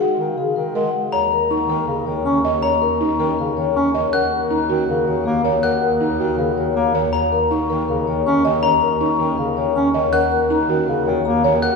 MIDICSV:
0, 0, Header, 1, 6, 480
1, 0, Start_track
1, 0, Key_signature, -6, "minor"
1, 0, Tempo, 375000
1, 1449, Time_signature, 4, 2, 24, 8
1, 15049, End_track
2, 0, Start_track
2, 0, Title_t, "Glockenspiel"
2, 0, Program_c, 0, 9
2, 1439, Note_on_c, 0, 82, 55
2, 1758, Note_off_c, 0, 82, 0
2, 3361, Note_on_c, 0, 82, 55
2, 3678, Note_off_c, 0, 82, 0
2, 5287, Note_on_c, 0, 90, 62
2, 5601, Note_off_c, 0, 90, 0
2, 7208, Note_on_c, 0, 90, 59
2, 7521, Note_off_c, 0, 90, 0
2, 9123, Note_on_c, 0, 82, 55
2, 9439, Note_off_c, 0, 82, 0
2, 11043, Note_on_c, 0, 82, 61
2, 11359, Note_off_c, 0, 82, 0
2, 12962, Note_on_c, 0, 90, 66
2, 13279, Note_off_c, 0, 90, 0
2, 14880, Note_on_c, 0, 90, 61
2, 15049, Note_off_c, 0, 90, 0
2, 15049, End_track
3, 0, Start_track
3, 0, Title_t, "Vibraphone"
3, 0, Program_c, 1, 11
3, 2, Note_on_c, 1, 78, 53
3, 319, Note_off_c, 1, 78, 0
3, 481, Note_on_c, 1, 68, 49
3, 719, Note_on_c, 1, 70, 53
3, 798, Note_off_c, 1, 68, 0
3, 964, Note_on_c, 1, 78, 61
3, 1038, Note_off_c, 1, 70, 0
3, 1279, Note_off_c, 1, 78, 0
3, 1445, Note_on_c, 1, 82, 65
3, 1687, Note_on_c, 1, 70, 56
3, 1760, Note_off_c, 1, 82, 0
3, 1926, Note_on_c, 1, 85, 56
3, 2000, Note_off_c, 1, 70, 0
3, 2240, Note_off_c, 1, 85, 0
3, 2400, Note_on_c, 1, 70, 47
3, 2646, Note_on_c, 1, 73, 52
3, 2718, Note_off_c, 1, 70, 0
3, 2885, Note_on_c, 1, 85, 71
3, 2960, Note_off_c, 1, 73, 0
3, 3127, Note_on_c, 1, 73, 46
3, 3200, Note_off_c, 1, 85, 0
3, 3360, Note_on_c, 1, 82, 71
3, 3441, Note_off_c, 1, 73, 0
3, 3604, Note_on_c, 1, 70, 58
3, 3678, Note_off_c, 1, 82, 0
3, 3845, Note_on_c, 1, 85, 52
3, 3919, Note_off_c, 1, 70, 0
3, 4160, Note_off_c, 1, 85, 0
3, 4333, Note_on_c, 1, 70, 49
3, 4572, Note_on_c, 1, 73, 59
3, 4643, Note_off_c, 1, 70, 0
3, 4815, Note_on_c, 1, 85, 66
3, 4882, Note_off_c, 1, 73, 0
3, 5058, Note_on_c, 1, 73, 52
3, 5123, Note_off_c, 1, 85, 0
3, 5298, Note_on_c, 1, 78, 68
3, 5364, Note_off_c, 1, 73, 0
3, 5537, Note_on_c, 1, 70, 58
3, 5604, Note_off_c, 1, 78, 0
3, 5768, Note_on_c, 1, 82, 56
3, 5844, Note_off_c, 1, 70, 0
3, 6081, Note_off_c, 1, 82, 0
3, 6260, Note_on_c, 1, 70, 49
3, 6494, Note_on_c, 1, 73, 56
3, 6565, Note_off_c, 1, 70, 0
3, 6725, Note_on_c, 1, 82, 65
3, 6803, Note_off_c, 1, 73, 0
3, 6971, Note_on_c, 1, 73, 50
3, 7040, Note_off_c, 1, 82, 0
3, 7211, Note_on_c, 1, 78, 73
3, 7282, Note_off_c, 1, 73, 0
3, 7455, Note_on_c, 1, 70, 56
3, 7522, Note_off_c, 1, 78, 0
3, 7697, Note_on_c, 1, 82, 58
3, 7764, Note_off_c, 1, 70, 0
3, 8004, Note_off_c, 1, 82, 0
3, 8171, Note_on_c, 1, 70, 53
3, 8418, Note_on_c, 1, 73, 63
3, 8482, Note_off_c, 1, 70, 0
3, 8664, Note_on_c, 1, 82, 69
3, 8724, Note_off_c, 1, 73, 0
3, 8900, Note_on_c, 1, 73, 57
3, 8967, Note_off_c, 1, 82, 0
3, 9142, Note_on_c, 1, 82, 73
3, 9205, Note_off_c, 1, 73, 0
3, 9373, Note_on_c, 1, 70, 56
3, 9446, Note_off_c, 1, 82, 0
3, 9616, Note_on_c, 1, 85, 61
3, 9683, Note_off_c, 1, 70, 0
3, 9924, Note_off_c, 1, 85, 0
3, 10093, Note_on_c, 1, 70, 54
3, 10331, Note_on_c, 1, 73, 59
3, 10403, Note_off_c, 1, 70, 0
3, 10578, Note_on_c, 1, 85, 69
3, 10642, Note_off_c, 1, 73, 0
3, 10806, Note_on_c, 1, 73, 53
3, 10884, Note_off_c, 1, 85, 0
3, 11053, Note_on_c, 1, 82, 69
3, 11120, Note_off_c, 1, 73, 0
3, 11290, Note_on_c, 1, 70, 59
3, 11363, Note_off_c, 1, 82, 0
3, 11528, Note_on_c, 1, 85, 58
3, 11601, Note_off_c, 1, 70, 0
3, 11841, Note_off_c, 1, 85, 0
3, 11999, Note_on_c, 1, 70, 52
3, 12250, Note_on_c, 1, 73, 58
3, 12318, Note_off_c, 1, 70, 0
3, 12489, Note_on_c, 1, 85, 70
3, 12562, Note_off_c, 1, 73, 0
3, 12729, Note_on_c, 1, 73, 57
3, 12801, Note_off_c, 1, 85, 0
3, 12966, Note_on_c, 1, 78, 77
3, 13041, Note_off_c, 1, 73, 0
3, 13206, Note_on_c, 1, 70, 60
3, 13280, Note_off_c, 1, 78, 0
3, 13447, Note_on_c, 1, 82, 60
3, 13520, Note_off_c, 1, 70, 0
3, 13761, Note_off_c, 1, 82, 0
3, 13926, Note_on_c, 1, 70, 53
3, 14166, Note_on_c, 1, 73, 60
3, 14240, Note_off_c, 1, 70, 0
3, 14399, Note_on_c, 1, 82, 72
3, 14480, Note_off_c, 1, 73, 0
3, 14645, Note_on_c, 1, 73, 56
3, 14718, Note_off_c, 1, 82, 0
3, 14881, Note_on_c, 1, 78, 82
3, 14960, Note_off_c, 1, 73, 0
3, 15049, Note_off_c, 1, 78, 0
3, 15049, End_track
4, 0, Start_track
4, 0, Title_t, "Marimba"
4, 0, Program_c, 2, 12
4, 8, Note_on_c, 2, 66, 52
4, 321, Note_off_c, 2, 66, 0
4, 966, Note_on_c, 2, 70, 60
4, 1280, Note_off_c, 2, 70, 0
4, 1445, Note_on_c, 2, 73, 56
4, 1760, Note_off_c, 2, 73, 0
4, 1928, Note_on_c, 2, 63, 55
4, 2170, Note_on_c, 2, 70, 56
4, 2241, Note_off_c, 2, 63, 0
4, 2482, Note_off_c, 2, 70, 0
4, 3132, Note_on_c, 2, 75, 74
4, 3370, Note_on_c, 2, 73, 55
4, 3442, Note_off_c, 2, 75, 0
4, 3682, Note_off_c, 2, 73, 0
4, 3851, Note_on_c, 2, 63, 61
4, 4092, Note_on_c, 2, 70, 53
4, 4162, Note_off_c, 2, 63, 0
4, 4402, Note_off_c, 2, 70, 0
4, 5050, Note_on_c, 2, 75, 66
4, 5293, Note_on_c, 2, 70, 58
4, 5362, Note_off_c, 2, 75, 0
4, 5602, Note_off_c, 2, 70, 0
4, 5769, Note_on_c, 2, 63, 57
4, 6010, Note_on_c, 2, 66, 56
4, 6081, Note_off_c, 2, 63, 0
4, 6321, Note_off_c, 2, 66, 0
4, 6971, Note_on_c, 2, 73, 68
4, 7212, Note_on_c, 2, 70, 58
4, 7282, Note_off_c, 2, 73, 0
4, 7522, Note_off_c, 2, 70, 0
4, 7690, Note_on_c, 2, 63, 58
4, 7934, Note_on_c, 2, 66, 48
4, 8002, Note_off_c, 2, 63, 0
4, 8243, Note_off_c, 2, 66, 0
4, 8892, Note_on_c, 2, 73, 70
4, 9120, Note_off_c, 2, 73, 0
4, 9135, Note_on_c, 2, 73, 58
4, 9443, Note_off_c, 2, 73, 0
4, 9614, Note_on_c, 2, 63, 59
4, 9854, Note_on_c, 2, 70, 52
4, 9923, Note_off_c, 2, 63, 0
4, 10163, Note_off_c, 2, 70, 0
4, 10815, Note_on_c, 2, 75, 73
4, 11053, Note_on_c, 2, 73, 59
4, 11123, Note_off_c, 2, 75, 0
4, 11363, Note_off_c, 2, 73, 0
4, 11532, Note_on_c, 2, 63, 56
4, 11773, Note_on_c, 2, 70, 50
4, 11842, Note_off_c, 2, 63, 0
4, 12083, Note_off_c, 2, 70, 0
4, 12728, Note_on_c, 2, 75, 70
4, 12964, Note_on_c, 2, 70, 62
4, 13041, Note_off_c, 2, 75, 0
4, 13279, Note_off_c, 2, 70, 0
4, 13445, Note_on_c, 2, 63, 61
4, 13686, Note_on_c, 2, 66, 53
4, 13760, Note_off_c, 2, 63, 0
4, 14000, Note_off_c, 2, 66, 0
4, 14648, Note_on_c, 2, 73, 79
4, 14886, Note_on_c, 2, 70, 62
4, 14961, Note_off_c, 2, 73, 0
4, 15049, Note_off_c, 2, 70, 0
4, 15049, End_track
5, 0, Start_track
5, 0, Title_t, "Bass clarinet"
5, 0, Program_c, 3, 71
5, 241, Note_on_c, 3, 51, 60
5, 424, Note_off_c, 3, 51, 0
5, 479, Note_on_c, 3, 49, 47
5, 663, Note_off_c, 3, 49, 0
5, 724, Note_on_c, 3, 51, 56
5, 906, Note_off_c, 3, 51, 0
5, 965, Note_on_c, 3, 56, 62
5, 1147, Note_off_c, 3, 56, 0
5, 2160, Note_on_c, 3, 51, 63
5, 2343, Note_off_c, 3, 51, 0
5, 2401, Note_on_c, 3, 49, 57
5, 2584, Note_off_c, 3, 49, 0
5, 2644, Note_on_c, 3, 51, 58
5, 2826, Note_off_c, 3, 51, 0
5, 2879, Note_on_c, 3, 61, 71
5, 3063, Note_off_c, 3, 61, 0
5, 4084, Note_on_c, 3, 51, 64
5, 4266, Note_off_c, 3, 51, 0
5, 4337, Note_on_c, 3, 49, 56
5, 4514, Note_off_c, 3, 49, 0
5, 4579, Note_on_c, 3, 51, 50
5, 4755, Note_off_c, 3, 51, 0
5, 4814, Note_on_c, 3, 61, 69
5, 4992, Note_off_c, 3, 61, 0
5, 6022, Note_on_c, 3, 51, 66
5, 6197, Note_off_c, 3, 51, 0
5, 6260, Note_on_c, 3, 49, 55
5, 6436, Note_off_c, 3, 49, 0
5, 6492, Note_on_c, 3, 51, 57
5, 6671, Note_off_c, 3, 51, 0
5, 6731, Note_on_c, 3, 58, 73
5, 6910, Note_off_c, 3, 58, 0
5, 6960, Note_on_c, 3, 51, 49
5, 7144, Note_off_c, 3, 51, 0
5, 7927, Note_on_c, 3, 51, 69
5, 8108, Note_off_c, 3, 51, 0
5, 8161, Note_on_c, 3, 49, 58
5, 8344, Note_off_c, 3, 49, 0
5, 8414, Note_on_c, 3, 51, 53
5, 8593, Note_off_c, 3, 51, 0
5, 8649, Note_on_c, 3, 58, 68
5, 8829, Note_off_c, 3, 58, 0
5, 8886, Note_on_c, 3, 51, 55
5, 9067, Note_off_c, 3, 51, 0
5, 9860, Note_on_c, 3, 51, 66
5, 10036, Note_off_c, 3, 51, 0
5, 10100, Note_on_c, 3, 49, 53
5, 10276, Note_off_c, 3, 49, 0
5, 10334, Note_on_c, 3, 51, 57
5, 10513, Note_off_c, 3, 51, 0
5, 10578, Note_on_c, 3, 61, 71
5, 10755, Note_off_c, 3, 61, 0
5, 10819, Note_on_c, 3, 51, 52
5, 10995, Note_off_c, 3, 51, 0
5, 11770, Note_on_c, 3, 51, 63
5, 11950, Note_off_c, 3, 51, 0
5, 12008, Note_on_c, 3, 49, 56
5, 12188, Note_off_c, 3, 49, 0
5, 12249, Note_on_c, 3, 51, 64
5, 12429, Note_off_c, 3, 51, 0
5, 12487, Note_on_c, 3, 61, 73
5, 12668, Note_off_c, 3, 61, 0
5, 12729, Note_on_c, 3, 51, 57
5, 12909, Note_off_c, 3, 51, 0
5, 13689, Note_on_c, 3, 51, 65
5, 13869, Note_off_c, 3, 51, 0
5, 13930, Note_on_c, 3, 49, 60
5, 14110, Note_off_c, 3, 49, 0
5, 14171, Note_on_c, 3, 51, 67
5, 14350, Note_off_c, 3, 51, 0
5, 14414, Note_on_c, 3, 58, 68
5, 14593, Note_off_c, 3, 58, 0
5, 14650, Note_on_c, 3, 51, 59
5, 14830, Note_off_c, 3, 51, 0
5, 15049, End_track
6, 0, Start_track
6, 0, Title_t, "Double bass"
6, 0, Program_c, 4, 43
6, 1443, Note_on_c, 4, 39, 53
6, 5139, Note_off_c, 4, 39, 0
6, 5288, Note_on_c, 4, 39, 58
6, 8981, Note_off_c, 4, 39, 0
6, 9132, Note_on_c, 4, 39, 58
6, 12823, Note_off_c, 4, 39, 0
6, 12962, Note_on_c, 4, 39, 56
6, 15049, Note_off_c, 4, 39, 0
6, 15049, End_track
0, 0, End_of_file